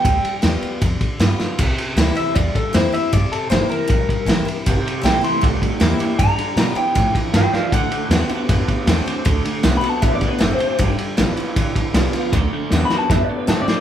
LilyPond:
<<
  \new Staff \with { instrumentName = "Clean electric guitar" } { \time 4/4 \key c \major \tempo 4 = 156 g''2~ g''8 r4. | r4. e''8 d''8 a'8 c''8 e''8 | d''8 a'8 c''8 bes'2~ bes'8~ | bes'8 r8 g''8 c'''8 r2 |
bes''4. g''4 r8 <b' g''>8 <d'' f''>8 | fis''2. r4 | r4 \tuplet 3/2 { r8 b''8 a''8 e''8 d''8 b'8 a'8 c''4 } | r1 |
r4 \tuplet 3/2 { r8 b''8 a''8 e''8 d''8 b'8 a'8 d''4 } | }
  \new Staff \with { instrumentName = "Steel-string acoustic guitar" } { \time 4/4 \key c \major << { r4 <g b f'>4 r4 <g b f'>8 <b f'>8 | r4 <e bes c' e'>8 e'8 r4 <e bes c' e'>8 <c' e'>8 | r4 <e bes c' e'>8 <c' e'>8 r4 <e bes c' e'>8 <c' e'>8 | r4 <e bes c' e'>8 <c' e'>8 r4 <e bes c' e'>8 <c' e'>8 |
r4 <g b f'>8 <b f'>8 r2 | r4 <d a c' fis'>8 <c' fis'>8 r4 <d a c' fis'>8 <c' fis'>8 | r4 <d a c' fis'>8 <c' fis'>8 r4 <d a c' fis'>8 <c' fis'>8 | r4 <g b f'>8 <b f'>8 r4 <g b f'>8 <b f'>8 |
r4 <d a c' fis'>8 <c' fis'>8 r4 <d a c' fis'>8 <c' fis'>8 | } \\ { g2 d2 | c2 g,2 | c2 g,2 | c2 g,2 |
g2 f4 e4 | d2 a,2 | d2 a,2 | g2 d2 |
d2 a,2 | } >> }
  \new Staff \with { instrumentName = "Clean electric guitar" } { \clef bass \time 4/4 \key c \major r1 | r1 | r1 | <c g>8 <c g>8 <c a>8 <c a>8 <c a>8 <c a>8 <c bes>8 <c bes>8 |
<g, d>8 <g, d>8 <g, e>8 <g, e>8 <g, e>8 <g, e>8 <g, f>8 <g, f>8 | <d a>8 <d a>8 <d b>8 <d b>8 <d b>8 <d b>8 <d c'>8 <d c'>8 | <d a>8 <d a>8 <d b>8 <d b>8 <d b>8 <d b>8 <d c'>8 <d c'>8 | <g, d>8 <g, d>8 <g, e>8 <g, e>8 <g, e>8 <g, e>8 <g, f>8 <g, f>8 |
<d a>8 <d a>8 <d b>8 <d b>8 <d b>8 <d b>8 <d c'>8 <d c'>8 | }
  \new Staff \with { instrumentName = "Upright bass" } { \clef bass \time 4/4 \key c \major d,8 r8 e,8 r8 f,8 r8 g,8 r8 | c,8 r8 d,8 r8 e,8 r8 f,8 r8 | g,8 r8 g,,8 r8 bes,,8 r8 a,,8 r8 | g,,8 r8 bes,,8 r8 c,8 r8 e,8 r8 |
g,8 r8 b,8 r8 a,8 r8 g,8 r8 | d,8 r8 e,8 r8 fis,8 r8 e,8 r8 | d,8 r8 c,8 r8 a,,8 r8 fis,,8 r8 | g,,8 r8 a,,8 r4. c,8 r8 |
d,8 r8 e,8 r8 fis,8 r8 a,8 r8 | }
  \new DrumStaff \with { instrumentName = "Drums" } \drummode { \time 4/4 <bd cymr>8 cymr8 <cymr sn>8 cymr8 <bd cymr>8 <bd cymr>8 <cymr sn>8 sn8 | <cymc bd cymr>8 cymr8 <cymr sn>8 cymr8 <bd cymr>8 <bd cymr>8 <cymr sn>8 cymr8 | <bd cymr>8 cymr8 <cymr sn>8 cymr8 <bd cymr>8 <bd cymr>8 <cymr sn>8 cymr8 | <bd cymr>8 cymr8 <cymr sn>8 cymr8 <bd cymr>8 <bd cymr>8 <cymr sn>8 cymr8 |
<bd cymr>8 cymr8 <cymr sn>8 cymr8 <bd cymr>8 <bd cymr>8 <cymr sn>8 sn8 | <bd cymr>8 cymr8 <cymr sn>8 cymr8 <bd cymr>8 <bd cymr>8 <cymr sn>8 cymr8 | <bd cymr>8 cymr8 <cymr sn>8 cymr8 <bd cymr>8 <bd cymr>8 <cymr sn>8 cymr8 | <bd cymr>8 cymr8 <cymr sn>8 cymr8 <bd cymr>8 <bd cymr>8 <cymr sn>8 cymr8 |
<bd sn>4 sn8 sn8 <bd sn>4 sn8 sn8 | }
>>